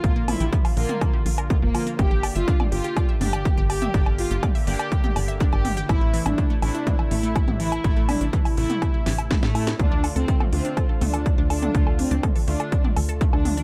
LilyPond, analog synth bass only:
\new Staff \with { instrumentName = "Analog synth bass" } { \clef bass \time 4/4 \key d \minor \tempo 4 = 123 bes,,8. bes,,16 r8 bes,,16 r8. bes,,8. f,,16 r8 | g,,8. g,,16 r8 g,,16 r8. g,,8. g,,8. | g,,8. g,,16 r8 g,,16 r8. g,,8. g,,8. | a,,8. a,,16 r8 a,,16 r8. a,,8. a,,8. |
a,,8. a,,16 r8 a,,16 r8. a,,8. a,8. | d,8. d,16 r8 d,16 r8. d,8. d,8. | d,8. d,16 r8 d,16 r8. d,8. d,8. | }